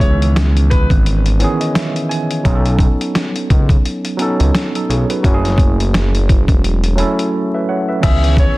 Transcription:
Already playing: C#2 D#3 E3 B3 C#4 D#4 G#4 B4
0.00 C#5, kick, closed hi-hat
0.22 closed hi-hat
0.36 snare, closed hi-hat
0.57 closed hi-hat
0.70 B4, kick, closed hi-hat
0.90 G#1, kick, closed hi-hat
1.06 closed hi-hat
1.26 closed hi-hat
1.39 D#3 E3 B3 C#4 C#5, closed hi-hat
1.44 G#4
1.60 D#5, closed hi-hat
1.75 E5, snare, closed hi-hat
1.96 closed hi-hat
2.09 G#5, closed hi-hat
2.31 closed hi-hat
2.44 B1 F#3 B3 C#4 D#4, kick, closed hi-hat
2.49 G#4
2.55 A4
2.66 closed hi-hat
2.79 kick, closed hi-hat
3.01 closed hi-hat
3.15 snare, closed hi-hat
3.36 closed hi-hat
3.50 C#2, kick, closed hi-hat
3.69 kick, closed hi-hat
3.85 closed hi-hat
4.05 closed hi-hat
4.17 F#3 B3 C#4 D#4, closed hi-hat
4.22 A4
4.40 C#2, closed hi-hat
4.55 snare, closed hi-hat
4.75 D#4 A4, closed hi-hat
4.89 B1 G#4 C#5, closed hi-hat
5.10 F#4 B4, closed hi-hat
5.23 F#1 F#3 A3 C#4 E4, kick, closed hi-hat
5.28 F#4
5.34 G#4
5.45 snare, closed hi-hat
5.58 kick, closed hi-hat
5.80 closed hi-hat
5.94 snare, closed hi-hat
6.15 closed hi-hat
6.29 kick, closed hi-hat
6.48 E1, kick, closed hi-hat
6.64 closed hi-hat
6.84 closed hi-hat
6.95 F#3 A3 C#4 E4, closed hi-hat
7.00 A4
7.19 closed hi-hat
7.55 B4 E5
7.69 C#5 F#5
7.89 B4 E5
8.00 C#2 D#3 E3 B3 C#4 E5, kick, closed hi-hat, crash
8.05 G#4
8.24 closed hi-hat
8.37 C#5, kick, closed hi-hat

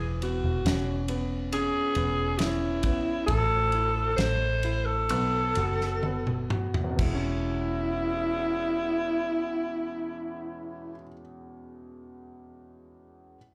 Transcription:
Already playing: E1 E3
0.22 B3 F#4, ride
0.44 E1
0.65 E1 C#4, snare, ride
1.08 B3, ride
1.52 C#4 G#4, ride
1.95 E1 B3, ride
2.39 C#4 E4, snare, ride
2.83 B3, kick, ride
3.27 A1 A3 A4, kick, ride
3.72 E4, ride
4.16 A1 A3 C5, snare, ride
4.63 E4, ride
4.86 A4
5.09 B1 B3, ride
5.55 F#1 F#4, ride
5.81 snare
6.03 B3, high tom
6.27 mid tom
6.50 F#4, mid tom
6.74 floor tom
6.84 E2
6.91 B2
6.96 E1 E3 E4, kick, crash
7.03 G#3
7.08 B3
7.15 C#4

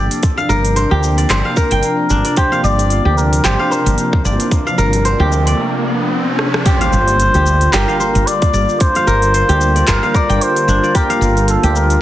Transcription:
Already playing: C3 F3 A#3 D4 G4 C5 D5 F5
0.11 open hi-hat, shaker
0.23 kick, open hi-hat, shaker
0.37 F5, shaker
0.49 G1 A#4, shaker
0.65 open hi-hat, shaker
0.76 C5, open hi-hat, shaker
0.91 D2 G4
1.04 shaker
1.18 D5, open hi-hat, shaker
1.29 G1 C5, clap, open hi-hat, shaker
1.45 F5
1.56 A#4, kick, shaker
1.71 G1 G5, open hi-hat, shaker
1.83 A#4, open hi-hat, shaker
2.10 G1 D4, shaker
2.25 D5, open hi-hat, shaker
2.37 G4 C5, kick, open hi-hat, riser, shaker
2.52 F5, shaker
2.64 G1 D5, shaker
2.79 open hi-hat, shaker
2.90 open hi-hat, shaker
3.05 D2 G4
3.17 A#4, shaker
3.33 open hi-hat, shaker
3.44 G1 G4 C5, clap, open hi-hat, shaker
3.59 F5
3.71 A#4 C5, shaker
3.86 G1, open hi-hat, shaker
3.98 open hi-hat, shaker
4.13 kick
4.25 G1 D5, shaker
4.40 open hi-hat, shaker
4.51 kick, open hi-hat, shaker
4.67 F5, shaker
4.78 G1 A#4, shaker
4.93 open hi-hat, shaker
5.05 C5, open hi-hat, shaker
5.20 D2 G4
5.32 shaker
5.47 D5, open hi-hat, shaker
6.39 cross-stick
6.54 cross-stick
6.65 D3 G3 A#3 F4 G4 C5, kick, open hi-hat, impact, shaker
6.81 F5, open hi-hat, shaker
6.93 G1, shaker
7.08 open hi-hat, shaker
7.20 open hi-hat, shaker
7.34 D2 G4, open hi-hat, shaker
7.46 shaker
7.61 open hi-hat, shaker
7.73 G1 G4 A#4, clap, open hi-hat, shaker
7.88 F5, shaker
8.00 A#4 C5, shaker
8.15 G1, open hi-hat, shaker
8.26 D5, open hi-hat, shaker
8.42 kick, open hi-hat, shaker
8.53 G1 D5, shaker
8.69 shaker
8.80 C5, kick, open hi-hat, shaker
8.95 F5, open hi-hat, shaker
9.07 G1 A#4, shaker
9.22 open hi-hat, shaker
9.34 C5, open hi-hat, shaker
9.49 D2 G4, open hi-hat, shaker
9.61 shaker
9.76 D5, open hi-hat, shaker
9.87 G1 A#4 C5, kick, clap, open hi-hat, shaker
10.03 F5, shaker
10.14 A#4 D5, kick, shaker
10.29 G1 G5, open hi-hat, shaker
10.41 C5, open hi-hat, shaker
10.56 open hi-hat, shaker
10.68 G1 D4, shaker
10.83 D5, shaker
10.95 G4 A#4, kick, open hi-hat, shaker
11.10 F5, open hi-hat, shaker
11.21 G1, shaker
11.37 open hi-hat, shaker
11.48 A4, open hi-hat, shaker
11.63 D2 G4, open hi-hat, shaker
11.76 A#4, shaker
11.90 open hi-hat, shaker

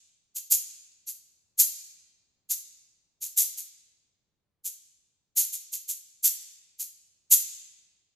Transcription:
0.36 shaker
0.51 shaker
1.07 shaker
1.59 shaker
2.50 shaker
3.22 shaker
3.37 shaker
3.57 shaker
4.65 shaker
5.37 shaker
5.53 shaker
5.73 shaker
5.89 shaker
6.24 shaker
6.80 shaker
7.31 shaker

